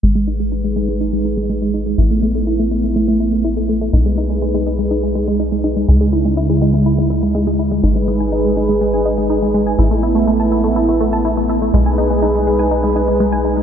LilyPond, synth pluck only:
\new Staff \with { instrumentName = "Synth pluck" } { \time 4/4 \key gis \phrygian \tempo 4 = 123 gis16 gis16 dis'16 gis16 dis'16 gis16 gis16 gis16 dis'16 gis16 dis'16 gis16 gis16 gis16 dis'16 gis16 | e'16 a16 a16 a16 e'16 a16 e'16 a16 a16 a16 e'16 a16 e'16 a16 a16 a16 | dis'16 gis16 dis'16 gis16 gis16 gis16 dis'16 gis16 dis'16 gis16 gis16 gis16 dis'16 gis16 dis'16 gis16 | gis16 gis16 e'16 gis16 e'16 gis16 gis16 gis16 e'16 gis16 e'16 gis16 gis16 gis16 e'16 gis16 |
dis'16 gis16 gis16 gis''16 dis'16 gis16 dis'16 gis16 gis16 gis''16 dis'16 gis16 dis'16 gis16 gis16 gis''16 | e'16 a16 e'16 a16 a16 a''16 e'16 a16 e'16 a16 a16 a''16 e'16 a16 e'16 a16 | gis16 gis''16 dis'16 gis16 dis'16 gis16 gis16 gis''16 dis'16 gis16 dis'16 gis16 gis16 gis''16 dis'16 gis16 | }